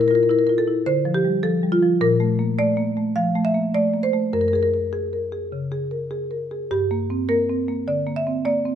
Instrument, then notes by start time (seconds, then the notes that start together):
marimba
Already playing: A#2 E4
0.01 A#4
0.08 F4 A#4
0.15 A#4
0.23 A#4
0.29 E4 A#4
0.39 A#4
0.47 F4 A#4
0.58 A4
0.68 E4
0.86 D3 C5
1.05 F3
1.14 G4
1.25 G3
1.43 F3 A4
1.63 G3
1.72 F4
1.82 F3
2.01 A#2 A#4
2.20 A3
2.39 A#3
2.59 A3 D5
2.77 A#3
2.97 A3
3.16 F3 F5
3.35 A3
3.45 E5
3.54 A#3
3.74 A3 D5
3.94 A#3
4.03 C5
4.13 A3
4.33 F#2 A#4
4.41 A#4
4.48 A#4
4.53 G#4 A#4
4.63 A#4
4.74 A#4
4.93 G#4
5.13 A#4
5.32 G#4
5.52 C#3
5.72 G#4
5.91 A#4
6.11 G#4
6.31 A#4
6.51 G#4
6.71 G2 G4
6.91 A#3
7.10 C4
7.29 A#3 A#4
7.49 C4
7.68 A#3
7.88 D3 D5
8.07 A#3
8.16 E5
8.27 C4
8.45 A#3 D5
8.65 C4